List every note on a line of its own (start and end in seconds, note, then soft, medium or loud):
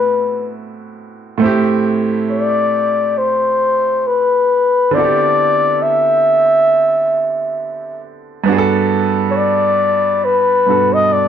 0.00 1.36 A2 medium
0.00 1.37 B3 medium
0.00 1.38 C4 medium
0.00 1.39 E4 medium
0.00 1.40 F#4 medium
0.00 0.53 B4 medium
1.38 4.88 A2 medium
1.38 4.89 A3 medium
1.38 4.90 C4 medium
1.44 4.91 E4 medium
1.44 4.92 G4 medium
2.31 3.19 D5 medium
3.18 4.08 C5 medium
4.07 4.96 B4 medium
4.91 8.42 D3 medium
4.91 8.42 B3 medium
4.91 8.43 C4 medium
4.91 5.84 D5 loud
4.96 8.44 E4 medium
4.96 5.03 F#4 soft
4.96 8.46 A4 medium
5.04 8.48 G4 medium
5.83 8.03 E5 medium
8.44 10.62 G2 medium
8.44 10.63 B3 medium
8.48 10.64 D4 medium
8.48 10.65 F#4 medium
8.52 8.57 G#4 medium
8.58 10.69 A4 medium
9.30 9.38 C#5 medium
9.37 10.26 D5 medium
10.25 10.95 B4 medium
10.66 11.28 G2 soft
10.66 11.28 B2 soft
10.66 11.28 D4 soft
10.66 11.28 F#4 soft
10.71 11.28 A4 soft
10.94 11.14 D#5 medium
11.13 11.28 D5 medium